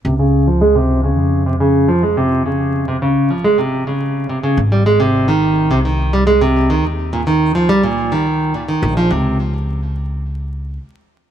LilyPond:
<<
  \new Staff \with { instrumentName = "Nylon-string guitar" } { \clef bass \time 4/4 \key des \lydian \tempo 4 = 106 c16 des8 f16 aes16 c8 des8. c16 des8 f16 aes16 c16~ | c16 des8. c16 des8 f16 aes16 c8 des8. c16 des16 | r16 g16 aes16 c8 ees8. c16 ees8 g16 aes16 c8 ees16 | r8 bes,16 ees8 f16 g16 bes,8 ees8. bes,16 ees8 f16 |
c8 r2. r8 | }
  \new Staff \with { instrumentName = "Upright bass" } { \clef bass \time 4/4 \key des \lydian des,2 f,2~ | f,4. aes,,2~ aes,,8 | aes,,2 c,2 | ees,4. des,2 bes,,8 |
des,2. r4 | }
>>